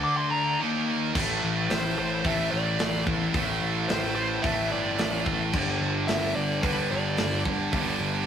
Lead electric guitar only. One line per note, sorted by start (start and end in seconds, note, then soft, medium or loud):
0.04 0.17 D6 loud
0.17 0.31 C6 loud
0.31 0.59 A#5 loud
1.70 1.97 C5 medium
1.99 2.26 C5 medium
2.26 2.51 E5 loud
2.51 3.03 D5 medium
3.88 4.14 C5 medium
4.15 4.44 C5 loud
4.42 4.69 E5 loud
4.71 5.23 D5 medium
6.07 6.33 E5 loud
6.36 6.64 D5 medium
6.62 6.88 B4 loud
6.91 7.42 D5 medium